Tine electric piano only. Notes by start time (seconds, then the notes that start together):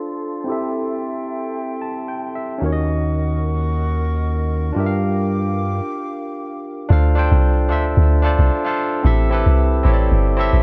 Already playing: D4 F4 A4 C5 F5
0.44 C4 E4 G4
0.50 A4 E5
1.82 A5
2.08 G5
2.36 E5
2.58 C#4 D#4 F#4
2.64 A#4 C#5
2.73 D#5
4.73 D4 F4 G4
4.78 A#4 E5
4.86 F5
6.89 D4 F4 A4 C5 F5
7.15 D4 F4 A4 C5 G5
7.69 D4 F4 A4 C5 E5
8.22 D4 F4 A4 C5 D5
8.64 D4 F4 A4 C5 F5
9.03 C4 E4 G4 A4 E5
9.30 C4 E4 G4 A4 B4
9.83 C4 E4 G4 A4 C#5
9.93 D5
10.37 C4 E4 G4 A4 E5